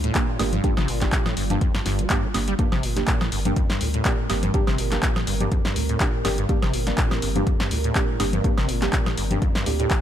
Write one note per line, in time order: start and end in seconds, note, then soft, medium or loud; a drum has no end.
0.00 0.11 D2 medium
0.00 0.13 A2 loud
0.00 10.01 G3 medium
0.00 2.55 D4 medium
0.00 2.58 F4 medium
0.00 closed hi-hat medium
0.15 0.23 A#3 medium
0.15 0.23 D4 medium
0.15 0.23 G4 loud
0.15 kick loud
0.15 clap loud
0.15 closed hi-hat medium
0.28 0.38 A2 loud
0.39 0.59 G1 loud
0.39 0.44 G2 loud
0.39 0.53 A#3 medium
0.39 0.53 D4 medium
0.39 0.53 G4 loud
0.39 snare medium
0.39 open hi-hat medium
0.39 high woodblock medium
0.53 0.62 G2 loud
0.53 closed hi-hat medium
0.53 low conga medium
0.64 0.75 G2 medium
0.64 0.72 A#3 medium
0.64 0.72 D4 medium
0.64 0.72 G4 loud
0.64 kick loud
0.64 closed hi-hat medium
0.77 0.86 G1 loud
0.77 0.90 C3 loud
0.77 snare medium
0.77 low conga medium
0.77 high woodblock medium
0.88 1.08 G1 medium
0.88 1.03 A#2 loud
0.88 open hi-hat loud
1.01 1.08 G1 medium
1.01 1.47 A#3 medium
1.01 1.47 D4 medium
1.01 1.47 G4 medium
1.01 kick medium
1.01 snare medium
1.01 clap soft
1.01 closed hi-hat medium
1.12 1.27 A#2 medium
1.12 kick loud
1.12 clap loud
1.12 closed hi-hat medium
1.26 1.35 A2 loud
1.26 snare medium
1.26 low conga medium
1.26 high woodblock medium
1.37 1.57 G1 loud
1.37 1.44 G2 medium
1.37 open hi-hat medium
1.50 1.59 G2 loud
1.50 1.57 A#3 medium
1.50 1.57 D4 medium
1.50 1.57 G4 loud
1.50 closed hi-hat medium
1.50 low conga medium
1.61 kick loud
1.61 closed hi-hat medium
1.75 1.81 G2 medium
1.75 snare medium
1.86 2.06 G1 loud
1.86 2.01 G2 loud
1.86 snare medium
1.86 open hi-hat loud
1.99 2.08 G3 medium
1.99 closed hi-hat medium
2.10 2.25 G2 loud
2.10 2.18 A#3 medium
2.10 2.18 D4 medium
2.10 2.18 G4 medium
2.10 kick loud
2.10 clap loud
2.10 closed hi-hat medium
2.24 2.27 G3 loud
2.34 2.55 G1 medium
2.34 2.39 G2 medium
2.34 2.48 A#3 medium
2.34 2.48 D4 medium
2.34 2.48 G4 loud
2.34 snare medium
2.34 open hi-hat medium
2.34 high woodblock medium
2.48 2.54 G3 loud
2.48 closed hi-hat medium
2.59 2.70 G2 medium
2.59 2.67 A#3 medium
2.59 10.01 C4 medium
2.59 2.67 D4 medium
2.59 2.67 G4 loud
2.59 10.01 A#4 medium
2.59 kick loud
2.59 closed hi-hat medium
2.72 2.81 G1 loud
2.72 2.85 C3 loud
2.72 snare medium
2.72 low conga loud
2.72 high woodblock medium
2.83 3.03 G1 medium
2.83 2.98 A#2 loud
2.83 open hi-hat loud
2.96 3.03 G1 medium
2.96 3.42 A#3 medium
2.96 3.42 D4 medium
2.96 3.42 G4 medium
2.96 snare medium
2.96 closed hi-hat medium
3.07 3.22 A#2 medium
3.07 kick loud
3.07 clap loud
3.07 closed hi-hat medium
3.21 3.30 A2 loud
3.21 snare medium
3.21 low conga medium
3.21 high woodblock medium
3.32 3.52 G1 loud
3.32 3.39 G2 medium
3.32 open hi-hat loud
3.45 3.55 G2 loud
3.45 3.52 A#3 medium
3.45 3.52 D4 medium
3.45 3.52 G4 loud
3.45 closed hi-hat medium
3.45 low conga medium
3.56 3.67 F2 medium
3.56 kick loud
3.56 closed hi-hat medium
3.70 3.82 G2 medium
3.70 snare medium
3.81 4.01 D2 medium
3.81 3.88 A#2 loud
3.81 open hi-hat loud
3.94 4.03 A2 loud
3.94 closed hi-hat medium
4.05 4.20 A#2 medium
4.05 4.13 A#3 medium
4.05 4.14 D4 medium
4.05 4.14 G4 loud
4.05 kick loud
4.05 clap loud
4.05 closed hi-hat medium
4.19 4.28 A2 loud
4.30 4.50 G1 medium
4.30 4.34 G2 loud
4.30 4.43 A#3 medium
4.30 4.43 D4 medium
4.30 4.43 G4 loud
4.30 snare medium
4.30 open hi-hat medium
4.30 high woodblock medium
4.43 4.52 G2 loud
4.43 closed hi-hat medium
4.43 low conga medium
4.54 4.65 G2 medium
4.54 4.62 A#3 medium
4.54 4.62 D4 medium
4.54 4.62 G4 loud
4.54 kick loud
4.54 closed hi-hat medium
4.67 4.76 G1 loud
4.67 4.80 C3 loud
4.67 snare medium
4.67 low conga loud
4.67 high woodblock medium
4.78 4.98 G1 medium
4.78 4.93 A#2 loud
4.78 open hi-hat loud
4.91 4.98 G1 medium
4.91 5.37 A#3 medium
4.91 5.37 D4 medium
4.91 5.37 G4 medium
4.91 snare medium
4.91 clap soft
4.91 closed hi-hat medium
5.03 5.18 A#2 medium
5.03 kick loud
5.03 clap loud
5.03 closed hi-hat medium
5.16 5.25 A2 loud
5.16 snare medium
5.16 low conga medium
5.16 high woodblock medium
5.27 5.47 G1 loud
5.27 5.35 G2 medium
5.27 open hi-hat loud
5.40 5.50 G2 loud
5.40 5.47 A#3 loud
5.40 5.47 D4 medium
5.40 5.47 G4 loud
5.40 closed hi-hat medium
5.40 low conga medium
5.52 5.63 F2 medium
5.52 kick loud
5.52 closed hi-hat medium
5.65 5.77 G2 medium
5.65 snare medium
5.76 5.96 D2 medium
5.76 5.83 A#2 loud
5.76 open hi-hat loud
5.89 5.98 A2 loud
5.89 closed hi-hat medium
6.00 6.15 A#2 medium
6.00 6.09 A#3 medium
6.00 6.09 D4 medium
6.00 6.09 G4 loud
6.00 kick loud
6.00 clap loud
6.00 closed hi-hat medium
6.14 6.23 A2 loud
6.25 6.45 G1 loud
6.25 6.29 G2 loud
6.25 6.38 A#3 medium
6.25 6.38 D4 medium
6.25 6.38 G4 loud
6.25 snare medium
6.25 open hi-hat loud
6.25 high woodblock medium
6.38 6.47 G2 loud
6.38 closed hi-hat medium
6.49 6.60 G2 medium
6.49 6.57 A#3 medium
6.49 6.57 D4 medium
6.49 6.57 G4 loud
6.49 kick loud
6.49 closed hi-hat medium
6.62 6.71 G1 loud
6.62 6.75 C3 loud
6.62 snare medium
6.62 low conga loud
6.62 high woodblock medium
6.73 6.94 G1 medium
6.73 6.88 A#2 loud
6.73 open hi-hat loud
6.87 6.93 G1 medium
6.87 7.32 A#3 medium
6.87 7.32 D4 medium
6.87 7.32 G4 medium
6.87 snare medium
6.87 closed hi-hat medium
6.98 7.13 A#2 medium
6.98 kick loud
6.98 clap loud
6.98 closed hi-hat medium
7.11 7.20 A2 loud
7.11 snare medium
7.11 low conga medium
7.11 high woodblock medium
7.22 7.42 G1 loud
7.22 7.30 G2 medium
7.22 open hi-hat loud
7.36 7.45 G2 loud
7.36 7.43 A#3 medium
7.36 7.43 D4 medium
7.36 7.43 G4 loud
7.36 closed hi-hat medium
7.36 low conga medium
7.47 7.58 F2 medium
7.47 kick loud
7.47 closed hi-hat medium
7.60 7.73 G2 medium
7.60 snare medium
7.71 7.91 D2 medium
7.71 7.78 A#2 loud
7.71 open hi-hat loud
7.84 7.94 A2 loud
7.84 closed hi-hat medium
7.95 8.10 A#2 medium
7.95 8.04 A#3 medium
7.95 8.04 D4 medium
7.95 8.04 G4 loud
7.95 kick loud
7.95 clap loud
7.95 closed hi-hat medium
8.09 8.18 A2 loud
8.20 8.40 G1 loud
8.20 8.24 G2 loud
8.20 8.33 A#3 medium
8.20 8.33 D4 medium
8.20 8.33 G4 loud
8.20 snare medium
8.20 open hi-hat loud
8.20 high woodblock medium
8.33 8.42 G2 loud
8.33 closed hi-hat medium
8.33 low conga loud
8.44 8.55 G2 medium
8.44 8.53 A#3 medium
8.44 8.53 D4 medium
8.44 8.53 G4 loud
8.44 kick loud
8.44 closed hi-hat medium
8.58 8.67 G1 loud
8.58 8.70 C3 loud
8.58 snare medium
8.58 low conga loud
8.58 high woodblock medium
8.69 8.89 G1 medium
8.69 8.84 A#2 loud
8.69 open hi-hat loud
8.82 8.88 G1 medium
8.82 9.28 A#3 medium
8.82 9.28 D4 medium
8.82 9.28 G4 medium
8.82 snare medium
8.82 clap soft
8.82 closed hi-hat medium
8.93 9.08 A#2 medium
8.93 kick loud
8.93 clap loud
8.93 closed hi-hat medium
9.06 9.16 A2 loud
9.06 snare medium
9.06 low conga medium
9.06 high woodblock medium
9.17 9.37 G1 loud
9.17 9.25 G2 medium
9.17 open hi-hat loud
9.31 9.40 G2 loud
9.31 9.38 A#3 loud
9.31 9.38 D4 medium
9.31 9.38 G4 loud
9.31 closed hi-hat medium
9.31 low conga medium
9.42 9.53 F2 medium
9.42 kick loud
9.42 closed hi-hat soft
9.55 9.68 G2 medium
9.55 snare medium
9.66 9.86 D2 medium
9.66 9.74 A#2 loud
9.66 9.78 A#3 loud
9.66 9.78 D4 medium
9.66 9.78 G4 loud
9.66 open hi-hat loud
9.79 9.89 A2 loud
9.79 9.86 A#3 medium
9.79 9.86 D4 medium
9.79 9.86 G4 medium
9.79 closed hi-hat medium
9.91 10.01 A#2 medium
9.91 kick loud
9.91 clap loud
9.91 closed hi-hat medium